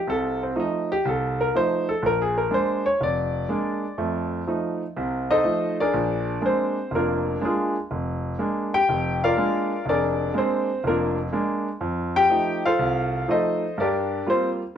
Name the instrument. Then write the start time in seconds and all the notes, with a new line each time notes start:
grand piano
0.07 C2 C3 A4
0.43 C4
0.56 F3 A3 D#4
0.60 D#4
0.92 G4
1.05 C2 A4
1.41 A#4
1.55 F3 A3 D#4 C5
1.89 A4
2.02 A#1 A#4
2.22 G#4
2.38 A#4
2.50 G#3 A#3 D4 C5
2.86 C#5
3.01 F1 D5
3.49 G#3 A#3 D4
3.98 F2 A3
4.47 F3 A3 D#4
4.97 C2 C3
5.31 D#4 A4 C5 D#5
5.44 F3 A3 D#4
5.80 D4 G#4 A#4 D5
5.94 A#1
6.41 G#3 A#3 D4
6.46 C4 C5
6.91 F1 A#4
6.95 A#3 D4 F4
7.41 G#3 A#3 D4 G#4
7.45 G#3 D4 F4
7.91 F1
8.39 G#3 A#3 D4
8.74 G4 G5
8.89 F1
9.24 F4 A#4 D5 F5
9.37 G#3 A#3 D4
9.86 F1 D4 G#4 A#4 D5
10.34 G#3 A#3 D4
10.38 C4 C5
10.84 F1 A#3 D4 F4 A#4
11.32 G#3 A#3 D4
11.81 F2
12.16 G4 G5
12.30 F3 A3 D#4
12.66 F4 A4 C5 F5
12.79 C2
13.28 F3 A3 D#4 A4 C5 D#5
13.78 G2 D4 G4 A#4 D5
14.26 G3 A#3 C4 F4 C5